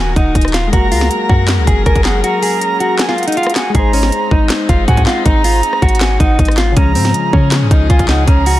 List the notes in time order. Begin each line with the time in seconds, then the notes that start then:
Already playing: D#1 D#3 A#3 D#4 F#4 A#4 G#5
0.16 D#1 D#4 F#5, kick, closed hi-hat
0.35 D#1, kick, closed hi-hat
0.41 cross-stick, closed hi-hat
0.48 closed hi-hat
0.54 F4, snare, clap, closed hi-hat
0.67 G#3
0.72 F#1 F#3 A#3 C#4 F#4 G#4 A#5, kick, closed hi-hat
0.77 F#4
0.92 C#2 F4, open hi-hat
1.01 snare
1.11 closed hi-hat
1.29 F#2 F#4, kick
1.48 snare, clap, closed hi-hat
1.58 C#2
1.67 F#1 G#4, kick, closed hi-hat
1.86 F#1 A#4 G#5, kick, closed hi-hat
1.95 F#1, kick, closed hi-hat
2.05 G#4 F#5, snare, clap
2.24 F#4 A#5, closed hi-hat
2.42 G#4, open hi-hat
2.61 closed hi-hat
2.80 F#4, closed hi-hat
2.99 G#5, snare, clap, closed hi-hat
3.09 F4, snare
3.18 F#5, closed hi-hat
3.23 closed hi-hat
3.27 D#4, closed hi-hat
3.32 closed hi-hat
3.37 F4, closed hi-hat
3.43 cross-stick, closed hi-hat
3.50 closed hi-hat
3.56 F#4 G#5, snare, clap, closed hi-hat
3.70 G#3
3.74 G#1 G#3 C4 D#4 G#4 A#5, kick, closed hi-hat
3.79 C5
3.93 C#4, open hi-hat
4.03 snare
4.12 closed hi-hat
4.31 G#1 D#4, kick
4.50 snare, clap, closed hi-hat
4.69 F#1 F4, kick, closed hi-hat
4.88 G#2 F#4 G#5, kick, closed hi-hat
4.97 kick, closed hi-hat
5.07 F4 F#5, snare, clap
5.26 G#1 D#4 A#5, kick, closed hi-hat
5.44 F4, open hi-hat
5.63 closed hi-hat
5.73 cross-stick
5.82 G#1 F#4, kick, closed hi-hat
5.89 closed hi-hat
5.95 closed hi-hat
6.01 G#5, snare, clap, closed hi-hat
6.20 G#1 D#4 F#5, kick, closed hi-hat
6.39 G#1, kick, closed hi-hat
6.45 cross-stick, closed hi-hat
6.51 closed hi-hat
6.58 F4, snare, clap, closed hi-hat
6.72 C#3
6.77 C#2 C#3 F3 G#3 C#4 G#4 A#5, kick, closed hi-hat
6.81 F3
6.95 G#2 C4, open hi-hat
7.05 snare
7.14 closed hi-hat
7.33 C#3 C#4, kick
7.52 snare, clap, closed hi-hat
7.62 G#2
7.71 C#2 D#4, kick, closed hi-hat
7.90 C#2 F4 G#5, kick, closed hi-hat
7.99 kick, closed hi-hat
8.09 D#4 F#5, snare, clap
8.28 C#2 C#4 A#5, kick, closed hi-hat
8.46 F#4, open hi-hat